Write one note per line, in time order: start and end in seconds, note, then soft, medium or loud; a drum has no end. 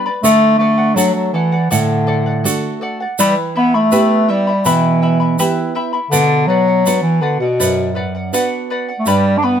0.06 0.24 B4 soft
0.06 0.23 D5 soft
0.06 0.24 B5 medium
0.23 0.95 D3 medium
0.23 0.57 A3 loud
0.23 0.59 A4 medium
0.23 0.59 D5 medium
0.23 0.60 F#5 medium
0.23 shaker medium
0.59 0.96 A3 medium
0.59 0.78 A4 medium
0.59 0.78 D5 medium
0.59 0.77 F#5 medium
0.78 0.96 D5 soft
0.78 0.96 F#5 soft
0.95 1.14 F#3 loud
0.95 1.55 A3 soft
0.95 1.56 D4 soft
0.95 1.56 F#4 medium
0.95 1.33 A4 medium
0.95 1.33 D5 medium
0.95 1.34 F#5 medium
0.95 shaker medium
1.14 1.32 F#3 medium
1.33 1.68 E3 medium
1.33 1.52 A4 medium
1.33 1.53 D5 medium
1.33 1.51 F#5 medium
1.52 1.70 D5 soft
1.52 1.70 F#5 soft
1.70 2.43 A2 medium
1.70 2.77 D3 medium
1.70 2.06 A4 medium
1.70 2.06 D5 medium
1.70 2.07 F#5 medium
1.70 shaker medium
2.07 2.26 A4 medium
2.07 2.26 D5 medium
2.07 2.25 F#5 medium
2.26 2.44 D5 soft
2.26 2.44 F#5 soft
2.44 3.03 A3 medium
2.44 3.04 D4 soft
2.44 3.04 F#4 medium
2.44 2.80 A4 medium
2.44 2.81 D5 medium
2.44 2.82 F#5 medium
2.44 shaker medium
2.81 2.99 A4 medium
2.81 3.00 D5 medium
2.81 2.99 F#5 medium
3.00 3.19 D5 soft
3.00 3.18 F#5 soft
3.19 3.90 E3 medium
3.19 3.35 G3 loud
3.19 3.54 E4 medium
3.19 3.55 B4 medium
3.19 3.55 E5 medium
3.19 3.54 G5 medium
3.19 3.56 B5 medium
3.19 shaker medium
3.55 3.76 B3 medium
3.55 3.74 E4 medium
3.55 3.73 E5 medium
3.55 3.73 G5 medium
3.55 3.73 B5 medium
3.74 4.31 A3 loud
3.74 3.91 E4 soft
3.74 3.92 E5 soft
3.74 3.92 B5 medium
3.92 4.50 B3 soft
3.92 4.28 E4 medium
3.92 4.51 E4 soft
3.92 4.51 G4 medium
3.92 4.28 B4 medium
3.92 4.29 E5 medium
3.92 4.27 G5 medium
3.92 4.29 B5 medium
3.92 shaker medium
4.28 4.68 G3 medium
4.28 4.47 E4 medium
4.28 4.47 E5 medium
4.28 4.47 G5 medium
4.28 4.46 B5 medium
4.47 4.65 E4 soft
4.47 4.65 E5 soft
4.47 4.65 B5 medium
4.65 5.37 B2 medium
4.65 5.76 E3 medium
4.65 5.02 E4 medium
4.65 5.02 B4 medium
4.65 5.02 E5 medium
4.65 5.01 G5 medium
4.65 5.02 B5 medium
4.65 shaker medium
5.02 5.20 E4 medium
5.02 5.20 E5 medium
5.02 5.20 G5 medium
5.02 5.19 B5 medium
5.20 5.38 E4 soft
5.20 5.38 E5 soft
5.20 5.38 B5 soft
5.39 5.98 B3 soft
5.39 5.74 E4 medium
5.39 5.98 E4 soft
5.39 5.98 G4 medium
5.39 5.76 B4 medium
5.39 5.75 E5 medium
5.39 5.74 G5 medium
5.39 5.75 B5 medium
5.39 shaker medium
5.75 5.93 E4 medium
5.75 5.92 E5 medium
5.75 5.94 G5 medium
5.75 5.92 B5 medium
5.93 6.11 E4 soft
5.93 6.12 E5 soft
5.93 6.12 B5 soft
6.11 6.84 B2 medium
6.11 6.48 D3 loud
6.11 6.47 B4 medium
6.11 6.48 D5 medium
6.11 6.49 F#5 medium
6.11 shaker medium
6.47 7.01 F#3 loud
6.47 6.67 B4 medium
6.47 6.68 D5 medium
6.47 6.67 F#5 medium
6.68 6.85 D5 soft
6.68 6.86 F#5 medium
6.86 7.45 B3 soft
6.86 7.45 D4 soft
6.86 7.46 F#4 medium
6.86 7.20 B4 medium
6.86 7.21 D5 medium
6.86 7.22 F#5 medium
6.86 shaker medium
7.02 7.23 E3 medium
7.21 7.40 D3 medium
7.21 7.40 B4 medium
7.21 7.41 D5 medium
7.21 7.39 F#5 medium
7.40 8.10 B2 medium
7.40 7.58 D5 soft
7.40 7.59 F#5 soft
7.60 8.31 F#2 medium
7.60 7.94 B4 medium
7.60 7.95 D5 medium
7.60 7.95 F#5 medium
7.60 shaker medium
7.95 8.14 B4 medium
7.95 8.14 D5 medium
7.95 8.14 F#5 medium
8.15 8.32 D5 soft
8.15 8.33 F#5 soft
8.33 8.91 B3 soft
8.33 8.92 D4 soft
8.33 8.92 F#4 medium
8.33 8.69 B4 medium
8.33 8.70 D5 medium
8.33 8.70 F#5 medium
8.33 shaker medium
8.70 8.88 B4 medium
8.70 8.89 D5 medium
8.70 8.87 F#5 medium
8.89 9.06 D5 soft
8.89 9.07 F#5 soft
8.99 9.09 A3 medium
9.06 9.60 G2 medium
9.06 9.39 G3 loud
9.06 9.43 G4 medium
9.06 9.42 B4 medium
9.06 9.42 D5 medium
9.06 9.41 G5 medium
9.06 9.42 B5 medium
9.06 shaker medium
9.38 9.46 D4 medium
9.42 9.60 B3 medium
9.42 9.60 B4 medium
9.42 9.60 D5 medium
9.42 9.60 G5 soft
9.42 9.60 B5 medium